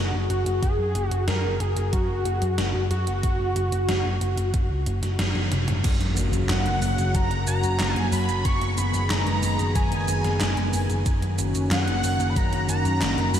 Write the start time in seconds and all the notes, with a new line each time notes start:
Already playing: F#1 F#4
0.14 F#1
0.30 F#1 F#4, closed hi-hat
0.46 F#1, closed hi-hat
0.62 F#1 G#4, kick, closed hi-hat
0.79 F#2
0.95 F#1, closed hi-hat
1.08 F#1 F#4, closed hi-hat
1.28 F#2 A#4, snare, closed hi-hat
1.44 F#1
1.60 F#1 G#4, closed hi-hat
1.77 F#1, closed hi-hat
1.93 F#2 F#4, kick, closed hi-hat
2.09 F#1
2.25 F#1, closed hi-hat
2.42 F#2, closed hi-hat
2.58 F#1, snare, closed hi-hat
2.75 F#1
2.91 F#2 F#4, closed hi-hat
3.07 F#1, closed hi-hat
3.23 F#1, kick, closed hi-hat
3.40 F#1
3.56 F#1, closed hi-hat
3.72 F#1, closed hi-hat
3.89 F#1, snare, closed hi-hat
4.05 F#1
4.21 F#1, closed hi-hat
4.38 F#1, closed hi-hat
4.54 F#1, kick, closed hi-hat
4.70 C#2
4.86 F#1, closed hi-hat
5.03 F#1, snare, closed hi-hat
5.19 F#1, snare, closed hi-hat
5.35 F#1, high tom
5.52 F#1, closed hi-hat, mid tom
5.68 F#1, closed hi-hat, mid tom
5.84 F#1 C#3 F#3 A#3 F#4, kick, closed hi-hat, crash, impact, shaker
6.01 F#2, closed hi-hat
6.17 F#1, closed hi-hat, shaker
6.33 F#1, closed hi-hat, shaker
6.49 F#2 F#5, snare, clap, closed hi-hat, shaker
6.66 F#1, closed hi-hat
6.82 F#1, open hi-hat, shaker
6.98 F#1, closed hi-hat, shaker
7.15 F#2 A#5, kick, closed hi-hat, shaker
7.31 F#1, closed hi-hat
7.47 F#1 A#5, closed hi-hat, shaker
7.63 F#2, closed hi-hat, shaker
7.80 F#1, snare, clap, closed hi-hat, shaker
7.93 F#1 G#5, closed hi-hat
8.12 F#2 B5, open hi-hat, shaker
8.29 F#1, closed hi-hat, shaker
8.45 F#1 D#3 G#3 B3 G#4 C#6, kick, closed hi-hat, shaker
8.61 F#1, closed hi-hat
8.78 F#1 B5, closed hi-hat, shaker
8.94 F#1, closed hi-hat, shaker
9.10 F#1 A#5, snare, clap, closed hi-hat, shaker
9.27 F#1, closed hi-hat
9.43 F#1, open hi-hat, shaker
9.59 F#1, closed hi-hat, shaker
9.75 F#2 G#5, kick, closed hi-hat, shaker
9.92 F#1, closed hi-hat
10.08 F#1, closed hi-hat, shaker
10.24 F#1, snare, closed hi-hat, shaker
10.41 F#1, snare, clap, closed hi-hat, shaker
10.57 F#1, closed hi-hat
10.73 F#1, open hi-hat, shaker
10.90 F#1, closed hi-hat, shaker
11.06 F#1 D#3 A#3 C#4 F#4, kick, closed hi-hat, shaker
11.22 F#2, closed hi-hat
11.39 F#1, closed hi-hat, shaker
11.55 F#1, closed hi-hat, shaker
11.71 F#2 F#5, snare, clap, closed hi-hat, shaker
11.87 F#1, closed hi-hat
12.04 F#1, open hi-hat, shaker
12.20 F#1, closed hi-hat, shaker
12.29 B5
12.36 F#2 A#5, kick, closed hi-hat, shaker
12.53 F#1, closed hi-hat
12.69 F#1 A#5, closed hi-hat, shaker
12.85 F#2, closed hi-hat, shaker
13.01 F#1, snare, clap, closed hi-hat, shaker
13.18 F#1, closed hi-hat
13.34 F#2 B5, open hi-hat, shaker